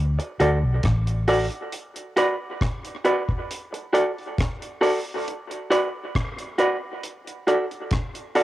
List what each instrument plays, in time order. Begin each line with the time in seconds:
Already playing: fingered electric bass D2
0.18 muted clean electric guitar stroke, closed hi-hat
0.39 fingered electric bass D2, clean electric guitar F#4 A4 D5, closed hi-hat
0.63 fingered electric bass B1
0.83 fingered electric bass A1, kick, cross-stick, closed hi-hat
1.07 closed hi-hat
1.28 clean electric guitar F#4 A4 D5, open hi-hat
1.50 closed hi-hat
1.72 closed hi-hat
1.96 closed hi-hat
2.17 clean electric guitar F#4 B4 D5, closed hi-hat
2.61 kick, cross-stick, closed hi-hat
2.85 closed hi-hat
3.05 clean electric guitar F#4 B4 D5, closed hi-hat
3.29 kick
3.51 closed hi-hat
3.73 muted clean electric guitar stroke, closed hi-hat
3.93 clean electric guitar F#4 A4 D5, closed hi-hat
4.18 closed hi-hat
4.38 kick, cross-stick, closed hi-hat
4.62 closed hi-hat
4.81 clean electric guitar F#4 A4 D5, open hi-hat
5.28 closed hi-hat
5.51 closed hi-hat
5.70 clean electric guitar F#4 B4 D5, closed hi-hat
6.15 kick, cross-stick, closed hi-hat
6.39 closed hi-hat
6.58 clean electric guitar F#4 B4 D5, closed hi-hat
7.04 closed hi-hat
7.27 closed hi-hat
7.47 clean electric guitar F#4 A4 D5, closed hi-hat
7.71 closed hi-hat
7.91 kick, cross-stick, closed hi-hat
8.15 closed hi-hat
8.35 clean electric guitar F#4 A4 D5, open hi-hat